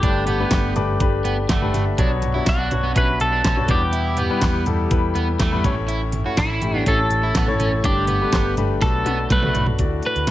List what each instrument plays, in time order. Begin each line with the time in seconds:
Already playing: clean electric guitar G4
0.03 picked electric bass G1, grand piano G2 D3 A3 D4 G4 B4, overdriven electric guitar D4, kick, closed hi-hat
0.27 overdriven electric guitar B3, closed hi-hat, floor tom
0.40 grand piano A3 D4 G4 B4
0.51 picked electric bass G1, kick, snare, clap, closed hi-hat
0.76 picked electric bass G1, grand piano A3 D4 G4 B4 D6, closed hi-hat, floor tom
1.00 picked electric bass G1, grand piano A3 D4 G4 B4 B5, kick, closed hi-hat
1.24 picked electric bass G1, overdriven electric guitar B3, grand piano G5, closed hi-hat
1.49 picked electric bass G1, overdriven electric guitar A3, grand piano F#5, kick, snare, clap, closed hi-hat
1.62 grand piano A3 D4 G4 B4, floor tom
1.74 picked electric bass G1, grand piano E5, snare, closed hi-hat, floor tom
1.98 picked electric bass B1, grand piano B2 F#3 B3 D4 F#4 C#5, overdriven electric guitar D4, kick, closed hi-hat
2.22 closed hi-hat, floor tom
2.34 grand piano B3 D4 F#4 C#5, overdriven electric guitar E4
2.46 picked electric bass B1, clean electric guitar F#4, kick, snare, clap, closed hi-hat
2.59 overdriven electric guitar D4
2.71 picked electric bass B1, grand piano B3 D4 F#4 C#5, closed hi-hat, floor tom
2.83 overdriven electric guitar B3
2.95 picked electric bass B1, grand piano B3 D4 F#4 E5, overdriven electric guitar C#4, clean electric guitar B4, kick, closed hi-hat
3.20 picked electric bass B1, clean electric guitar A4, closed hi-hat
3.32 overdriven electric guitar D4
3.44 picked electric bass B1, overdriven electric guitar C#4, kick, snare, clap, closed hi-hat
3.56 grand piano B3 D4 F#4 C#5, floor tom
3.68 picked electric bass E2, grand piano B2 G3 B3 E4 B4, overdriven electric guitar D4, clean electric guitar G4, kick, closed hi-hat, floor tom
3.93 overdriven electric guitar E4, closed hi-hat
4.17 overdriven electric guitar B3, closed hi-hat, floor tom
4.30 grand piano G3 B3 E4 B4
4.41 picked electric bass E2, kick, snare, clap, closed hi-hat
4.66 picked electric bass E2, grand piano G3 B3 E4 A4, closed hi-hat, floor tom
4.91 picked electric bass E2, grand piano G3 B3 E4 B4, kick, closed hi-hat
5.15 picked electric bass E2, overdriven electric guitar B3, closed hi-hat
5.40 picked electric bass E2, overdriven electric guitar A3, kick, snare, clap, closed hi-hat
5.52 grand piano G3 B3 E4 B4, floor tom
5.64 picked electric bass A1, grand piano A2 E3 A3 C#4 E4 C#5, kick, closed hi-hat, floor tom
5.88 overdriven electric guitar E4, closed hi-hat
6.12 closed hi-hat, floor tom
6.25 grand piano A3 C#4 E4 C#5, overdriven electric guitar F#4
6.37 picked electric bass A1, clean electric guitar E4, kick, snare, clap, closed hi-hat
6.50 overdriven electric guitar E4
6.62 picked electric bass A1, grand piano A3 C#4 E4 G4, closed hi-hat, floor tom
6.74 overdriven electric guitar B3
6.86 picked electric bass A1, grand piano A3 C#4 E4 C#5, overdriven electric guitar C#4, clean electric guitar A4, kick, closed hi-hat
7.10 picked electric bass A1, closed hi-hat
7.23 overdriven electric guitar E4
7.35 picked electric bass A1, overdriven electric guitar B3, kick, snare, clap, closed hi-hat
7.47 grand piano A3 C#4 E4 C#5, floor tom
7.59 picked electric bass A1, overdriven electric guitar C#4, closed hi-hat, floor tom
7.84 picked electric bass G1, grand piano G2 D3 A3 D4 G4 B4, overdriven electric guitar D4, clean electric guitar G4, kick, closed hi-hat
8.07 overdriven electric guitar B3, closed hi-hat, floor tom
8.22 grand piano A3 D4 G4 B4
8.32 picked electric bass G1, kick, snare, clap, closed hi-hat
8.57 picked electric bass G1, grand piano A3 D4 G4 B4, closed hi-hat, floor tom
8.81 picked electric bass B1, grand piano B2 F#3 A3 D4 F#4 B4, clean electric guitar A4, kick, snare, closed hi-hat
9.05 picked electric bass B1, overdriven electric guitar B3, closed hi-hat, high tom
9.30 picked electric bass B1, overdriven electric guitar A3, clean electric guitar B4, kick, closed hi-hat, mid tom
9.43 grand piano A3 D4 F#4 B4, mid tom
9.54 picked electric bass B1, closed hi-hat, floor tom
9.66 floor tom
9.79 picked electric bass D2, grand piano A2 A3 D4 F#4 D5, kick, closed hi-hat
10.03 clean electric guitar B4, closed hi-hat
10.16 picked electric bass D2, closed hi-hat
10.27 snare, closed hi-hat